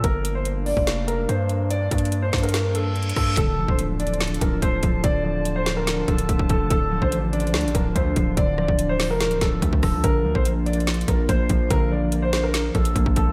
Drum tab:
HH |x-----------x-----------x-----------o-----------x-----------x-----------x-----------x-----------|x-----------x---x---x---x-----------x--x--x--x--x-----------x-----------x---x---x---o-----------|x-----------------------x-----------x---x---x---x---x---x---x-----------x-----------x-----------|x-----------------------x-----------x-----------x-----------x-----x-----x-----------x-----------|
SD |------------------------------------------------o-----------------------------------------------|------------------------------------o-----------o-----------------------------------r-----------|------------------------------------------------o-----------------------------------------------|------------------------------------o-----------o-----------------------------------------------|
BD |o-----------------------------------------o-----------------------------------------------------|------------o-----------------------o-----------------------------------------------o-----------|o-----------------o-----------------------------------------o-----------o-----------o-----------|o-----------------------------------------------------------o-----------o-----o-----o-----------|

HH |x-----------------------x-----------x---x---x---x---x---x---x-----------x-----------x-----------|x-----------------------x-----------o-----------x-----x-----x-----------x-----------o-----------|x-----------------------x-----------x---x---x---x---x---x---x-----------x-----------x-----------|x-----------------------x-----------x-----------x-----------x-----x-----x-----------x-----------|
SD |------------------------------------------------o-----------------------------------------------|------------r-----------------------o-----------o-----------o-----------------------r-----------|------------------------------------------------o-----------------------------------------------|------------------------------------o-----------o-----------------------------------------------|
BD |o-----------------o-----------------------------------------o-----------o-----------o-----------|o-----------------o-----------------------------------------o-----------o-----o-----o-----------|o-----------------o-----------------------------------------o-----------o-----------o-----------|o-----------------------------------------------------------o-----------o-----o-----o-----------|